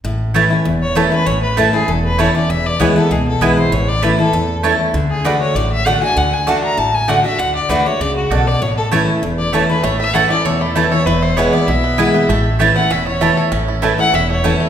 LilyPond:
<<
  \new Staff \with { instrumentName = "Fiddle" } { \time 4/4 \key a \major \tempo 4 = 196 r2 r8 cis''8 a'8 b'8 | cis''8 b'8 a'8 gis'8 a'8 b'8 cis''8 d''8 | e''8 d''8 cis''8 a'8 gis'8 a'8 b'8 c''8 | cis''8 d''8 b'8 a'4. r4 |
r8 gis'8 b'8 cis''8 d''8 e''8 fis''8 gis''8 | fis''8 gis''8 a''8 bes''8 a''8 gis''8 fis''8 e''8 | fis''8 d''8 b'8 cis''8 d''8 fis'8 a'8 d''8 | cis''8 a'8 r4. d''8 cis''8 b'8 |
cis''8 e''8 fis''8 d''8 cis''8 e'8 a'8 cis''8 | b'8 c''8 cis''8 d''8 e''2~ | e''4 r8 fis''8 e''8 cis''4. | r4. fis''8 e''8 cis''4. | }
  \new Staff \with { instrumentName = "Mandolin" } { \time 4/4 \key a \major r4 <a e' cis'' a''>8 r4. <a e' cis'' a''>8 r8 | r4 <a e' cis'' a''>8 r4. <a e' cis'' a''>8 r8 | r4 <b e' b' gis''>8 r4. <b e' b' gis''>8 r8 | r4 <a e' cis'' a''>8 r4. <a e' cis'' a''>8 r8 |
r4 <a fis' d'' fis''>8 r4. <a fis' d'' fis''>8 r8 | r4 <a fis' d'' fis''>8 r4. <a fis' d'' fis''>8 r8 | r4 <a fis' d'' fis''>8 r4. <a fis' d'' fis''>8 r8 | r4 <a e' cis'' a''>8 r4. <a e' cis'' a''>8 r8 |
r4 <a e' cis'' a''>8 r4. <a e' cis'' a''>8 r8 | r4 <b e' b' gis''>8 r4. <b e' b' gis''>8 r8 | r4 <a e' cis'' a''>8 r4. <a e' cis'' a''>8 r8 | r4 <a e' cis'' a''>8 r4. <a e' cis'' a''>8 r8 | }
  \new Staff \with { instrumentName = "Five-string banjo" } { \time 4/4 \key a \major r1 | r1 | r1 | r1 |
r1 | r1 | r1 | r1 |
a8 e'8 a'8 a8 a'8 a8 e'8 a'8 | e'8 e'8 b8 e'8 e'8 b8 e'8 b8 | a4 a8 e'8 cis'8 e'8 a8 a'8 | cis'8 e'8 a8 e'8 cis'8 a8 e'8 a8 | }
  \new Staff \with { instrumentName = "Steel-string acoustic guitar" } { \time 4/4 \key a \major << { r4 <e a cis' e'>8 <cis' e'>8 r4 <e a cis' e'>8 <cis' e'>8 | r4 <e a cis' e'>8 <cis' e'>8 r4 <e a cis' e'>8 <cis' e'>8 | r4 <e gis b e'>8 <b e'>8 r4 <e gis b e'>8 <b e'>8 | r4 <e a cis' e'>8 <cis' e'>8 r4 <e a cis' e'>4 |
r4 <d a d' fis'>4 r4 <d a d' fis'>8 <d' fis'>8 | r4 <d a d' fis'>4 r4 <d a d' fis'>8 <d' fis'>8 | r4 <d a d' fis'>8 <d' fis'>8 r2 | r4 <e a cis' e'>4 r4 <e a cis' e'>8 <cis' e'>8 |
r4 <e a cis' e'>8 <cis' e'>8 r4 <e a cis' e'>8 <cis' e'>8 | r4 <e gis b e'>8 <b e'>8 r4 <e gis b e'>8 <b e'>8 | r4 <e a cis' e'>8 <cis' e'>8 r4 <e a cis' e'>4 | r4 <e a cis' e'>8 <cis' e'>8 r4 <e a cis' e'>4 | } \\ { a,2 e,2 | a,2 e,2 | e,2 b,2 | a,2 e,2 |
d2 a,2 | d2 a,2 | d2 cis4 b,4 | a,2 e,2 |
a,2 e,2 | e,2 b,2 | a,2 e,2 | a,2 e,2 | } >> }
  \new Staff \with { instrumentName = "Upright bass" } { \clef bass \time 4/4 \key a \major a,,2 e,,2 | a,,2 e,,2 | e,,4 d,4 cis,4 b,,4 | a,,2 e,2 |
d,2 a,,2 | d,2 a,,2 | d,4 d,4 cis,4 b,,4 | a,,2 e,,2 |
a,,2 e,,2 | e,,2 b,,2 | a,,2 e,,2 | a,,2 e,,2 | }
>>